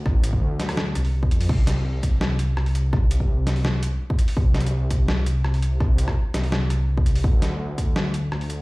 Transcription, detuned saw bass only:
X:1
M:4/4
L:1/8
Q:1/4=167
K:Dphr
V:1 name="Detuned saw bass" clef=bass
A,,,2 D,,3 C,,2 F,, | C,,6 C,,2 | C,,6 z2 | C,,6 C,,2 |
C,,2 z C,,4- C,, | D,,6 D,,2 |]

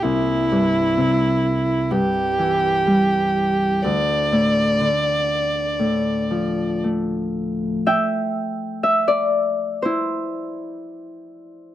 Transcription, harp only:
X:1
M:4/4
L:1/16
Q:1/4=61
K:Dm
V:1 name="Harp"
z16 | z16 | e8 E8 |]
V:2 name="Harp" clef=bass
C,,2 G,,2 C,4 G,,2 E,2 G,4 | D,,2 A,,2 D,4 A,,2 F,2 A,4 | g4 e d3 c6 z2 |]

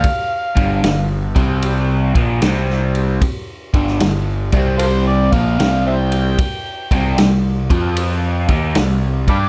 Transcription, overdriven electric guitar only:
X:1
M:4/4
L:1/8
Q:"Swing" 1/4=76
K:C
V:1 name="Overdriven electric guitar" clef=bass
z [G,,D,G,] [G,,D,] [C,G,C]2 [_B,,F,_B,] [C,G,C]2 | z [G,,D,G,] [G,,D,] [C,G,C]2 [_B,,F,_B,] [C,G,C]2 | z [C,G,C] [C,G,] [F,CF]2 [_E,_B,_E] [C,G,] [G,DG] |]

